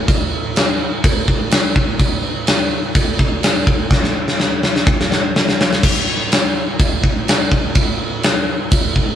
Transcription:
0.08 kick loud
0.08 crash medium
0.56 snare loud
0.56 crash medium
1.04 kick loud
1.04 crash medium
1.28 kick medium
1.51 snare loud
1.51 crash medium
1.76 kick loud
1.99 kick loud
1.99 crash medium
2.47 snare loud
2.47 crash medium
2.95 kick loud
2.95 crash medium
3.19 kick medium
3.43 snare loud
3.43 crash medium
3.67 kick loud
3.91 kick loud
3.91 snare medium
4.04 snare medium
4.28 snare medium
4.40 snare medium
4.63 snare medium
4.76 snare medium
4.87 kick loud
5.01 snare medium
5.12 snare loud
5.36 snare loud
5.49 snare medium
5.61 snare loud
5.73 snare loud
5.83 kick loud
5.83 crash loud
5.83 crash medium
6.32 snare loud
6.32 crash medium
6.80 kick loud
6.80 crash medium
7.04 kick medium
7.28 snare loud
7.28 crash medium
7.52 kick medium
7.75 kick loud
7.75 crash medium
8.23 snare loud
8.23 crash medium
8.72 kick loud
8.72 crash medium
8.96 kick medium

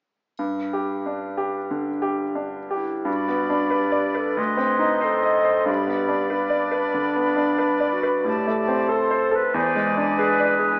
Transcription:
0.38 1.67 G2 soft
0.38 triangle soft
0.73 1.26 G4 soft
1.06 1.58 D4 soft
1.37 1.89 G4 soft
1.71 2.23 D3 soft
2.02 2.57 G4 soft
2.35 2.93 D4 soft
2.71 3.10 E4 soft
2.71 3.06 G4 soft
3.05 4.33 G2 soft
3.05 3.74 F#4 soft
3.05 4.39 D5 soft
3.05 4.34 B5 soft
3.28 3.64 B3 soft
3.50 3.85 D4 soft
3.70 4.19 G4 soft
3.70 4.07 B4 soft
3.92 4.28 D5 soft
4.15 4.40 A4 soft
4.15 4.37 B4 soft
4.37 5.64 D2 soft
4.37 5.06 B4 soft
4.37 5.66 D#5 soft
4.37 5.66 C6 soft
4.57 4.93 C4 soft
4.79 5.15 D#4 soft
5.01 5.70 A4 medium
5.01 5.37 C5 soft
5.23 5.59 D#5 soft
5.45 5.67 C5 soft
5.66 6.91 G2 soft
5.66 6.31 G4 medium
5.66 8.91 D5 soft
5.66 8.22 B5 soft
5.87 6.22 B3 soft
6.08 6.43 D4 soft
6.30 7.95 D4 medium
6.30 6.65 B4 soft
6.50 6.86 D5 soft
6.71 7.08 B4 soft
6.94 7.30 D3 soft
7.16 7.52 B3 soft
7.36 7.73 D4 soft
7.58 7.95 B4 soft
7.80 8.17 D5 soft
7.93 8.28 F#4 soft
8.03 8.26 B4 soft
8.24 9.49 A2 soft
8.24 8.92 G4 soft
8.24 9.26 A5 soft
8.47 8.82 A3 soft
8.68 9.03 C4 soft
8.89 9.24 A4 soft
8.89 9.37 A4 medium
8.89 9.31 C5 soft
9.11 9.45 C5 soft
9.31 9.54 A4 soft
9.31 9.56 B4 medium
9.54 10.76 E2 soft
9.54 9.96 C5 medium
9.54 10.76 D5 soft
9.54 10.80 G#5 soft
9.75 10.09 G#3 soft
9.97 10.31 D4 soft
10.17 10.52 G#4 soft
10.17 10.80 B4 medium
10.40 10.72 D5 soft
10.59 10.80 G#4 soft

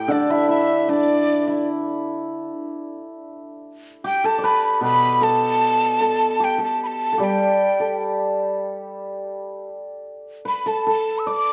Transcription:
0.00 0.30 E4 medium
0.00 2.02 G4 medium
0.00 1.73 A4 soft
0.00 0.13 G5 medium
0.08 2.47 D3 medium
0.08 0.88 D4 medium
0.08 0.33 D5 medium
0.30 0.48 E4 medium
0.30 0.49 E5 medium
0.49 1.47 E4 medium
0.49 0.91 E5 medium
0.89 4.62 D4 medium
0.89 1.68 D5 medium
1.47 4.95 E4 soft
4.04 6.40 G4 medium
4.04 4.27 G5 medium
4.24 5.21 A4 medium
4.24 4.47 A5 medium
4.38 6.85 D5 medium
4.44 4.83 B4 medium
4.44 4.83 B5 medium
4.81 7.20 B2 soft
4.81 7.56 B4 medium
4.81 5.25 B5 medium
5.21 6.00 A4 medium
5.21 6.46 A5 medium
6.00 6.58 A4 medium
6.40 7.17 G4 medium
6.44 6.62 G5 medium
6.58 7.12 A4 medium
6.64 6.81 A5 medium
6.83 7.25 A5 medium
6.83 6.88 B5 medium
7.13 7.80 A4 soft
7.18 9.65 G3 soft
7.18 10.32 G4 medium
7.24 8.03 G5 medium
7.80 10.66 A4 medium
10.45 11.53 B4 medium
10.45 10.69 B5 medium
10.66 10.86 A4 medium
10.66 10.87 A5 medium
10.87 11.53 A4 medium
10.87 11.20 A5 medium
11.19 11.29 E6 medium
11.27 11.53 D5 medium
11.27 11.53 D6 medium

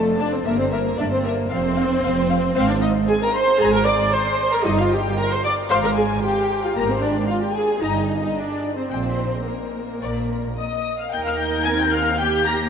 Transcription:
0.00 0.40 F1 medium
0.00 0.39 F2 medium
0.00 0.20 A3 medium
0.00 0.20 A4 medium
0.19 0.33 D4 medium
0.19 0.33 D5 medium
0.19 0.28 A5 soft
0.34 0.47 C4 medium
0.34 0.46 C5 medium
0.45 0.92 G1 medium
0.45 0.92 G2 medium
0.45 0.59 A#3 medium
0.45 0.59 A#4 medium
0.45 0.54 E5 medium
0.59 0.65 C4 medium
0.59 0.72 C5 medium
0.72 0.85 A#3 medium
0.72 0.84 A#4 medium
0.72 0.80 E5 soft
0.85 0.91 A#3 medium
0.85 0.98 A#4 medium
0.98 1.44 G1 medium
0.98 1.44 G2 medium
0.98 1.04 D4 medium
0.98 1.11 D5 medium
0.98 1.06 E5 soft
1.12 1.25 C4 medium
1.12 1.24 C5 medium
1.24 1.51 A#3 medium
1.24 1.32 A#4 medium
1.24 1.33 E5 soft
1.50 1.97 F1 medium
1.50 1.97 F2 medium
1.50 2.54 C4 medium
1.50 2.54 C5 medium
1.50 1.58 F5 medium
1.76 1.84 F5 medium
2.03 2.50 F1 medium
2.03 2.50 F2 medium
2.03 2.12 F5 medium
2.30 2.38 F5 medium
2.55 3.00 G#1 medium
2.55 2.99 G#2 medium
2.55 2.69 C4 medium
2.55 2.61 C5 medium
2.55 2.80 F5 medium
2.69 2.83 D4 medium
2.69 2.75 D5 medium
2.82 2.90 D#4 medium
2.82 2.90 D#5 medium
3.07 3.13 G#4 medium
3.07 3.21 G#5 medium
3.22 3.35 A#4 medium
3.22 3.35 A#5 medium
3.34 3.60 C5 medium
3.34 3.61 C6 medium
3.60 4.05 G#1 medium
3.60 4.04 G#2 medium
3.60 3.74 G#4 loud
3.60 3.74 G#5 medium
3.60 3.86 A#5 medium
3.74 3.87 A#4 medium
3.74 3.87 A#5 medium
3.86 4.13 D5 medium
3.86 3.95 D6 medium
4.13 4.53 C5 medium
4.13 4.52 C6 medium
4.52 4.66 A#4 medium
4.52 4.57 A#5 medium
4.64 5.09 G1 medium
4.64 5.09 G2 medium
4.64 4.79 D#4 medium
4.64 4.71 D#5 medium
4.64 4.90 D#5 medium
4.78 4.92 F4 medium
4.78 4.84 F5 medium
4.91 5.18 G4 medium
4.91 5.18 G5 medium
5.18 5.31 A#4 medium
5.18 5.32 A#5 medium
5.31 5.45 C5 medium
5.31 5.45 C6 medium
5.44 5.52 D5 medium
5.44 5.53 D6 medium
5.69 6.15 G#1 medium
5.69 6.14 G#2 medium
5.69 5.76 C5 medium
5.69 5.95 F5 medium
5.69 5.76 C6 medium
5.83 5.90 A#4 medium
5.83 5.97 A#5 medium
5.96 6.04 G#4 medium
5.96 6.23 G#5 medium
6.23 6.62 G4 medium
6.23 6.63 G5 medium
6.64 6.77 F4 medium
6.64 6.77 F5 medium
6.75 7.20 G#1 medium
6.75 7.20 G#2 medium
6.75 6.89 A#3 medium
6.75 6.90 A#4 medium
6.75 7.01 A#5 medium
6.89 7.03 C4 medium
6.89 7.03 C5 medium
7.02 7.29 D4 medium
7.02 7.29 D5 medium
7.28 7.41 F4 medium
7.28 7.34 F5 medium
7.42 7.47 G4 medium
7.42 7.56 G5 medium
7.54 7.81 G#4 medium
7.54 7.82 G#5 medium
7.81 8.27 G1 soft
7.81 8.26 G2 medium
7.81 8.21 D#4 medium
7.81 8.21 D#5 medium
7.81 8.07 A#5 soft
8.22 8.36 D#4 medium
8.22 8.36 D#5 soft
8.36 8.76 D4 medium
8.36 8.77 D5 soft
8.76 8.89 C4 medium
8.76 8.90 C5 soft
8.90 9.37 A#1 soft
8.90 9.37 A#2 soft
8.90 9.45 C4 medium
8.90 9.46 C5 soft
8.90 9.16 G5 soft
9.46 10.85 A#3 soft
9.46 10.56 A#4 soft
10.01 10.48 A#1 soft
10.01 10.48 A#2 soft
10.01 10.28 D5 soft
10.57 10.96 D#5 soft
10.57 10.97 D#6 medium
10.98 11.12 F5 medium
10.98 11.05 F6 soft
11.12 12.69 D#2 medium
11.12 11.63 A#3 medium
11.12 12.16 D#4 medium
11.12 12.15 A#4 medium
11.12 11.26 G5 medium
11.12 11.18 G6 medium
11.25 11.39 F5 medium
11.25 11.32 F6 medium
11.38 11.46 G5 medium
11.38 11.66 G6 medium
11.64 12.20 C4 medium
11.64 11.70 G#5 medium
11.64 11.79 G#6 medium
11.79 11.85 G5 medium
11.79 11.94 G6 medium
11.92 12.19 F5 medium
11.92 12.19 F6 medium
12.19 12.69 A#3 medium
12.19 12.69 G4 medium
12.19 12.46 G5 medium
12.19 12.45 G6 medium
12.45 12.53 A#5 medium
12.45 12.69 A#6 medium

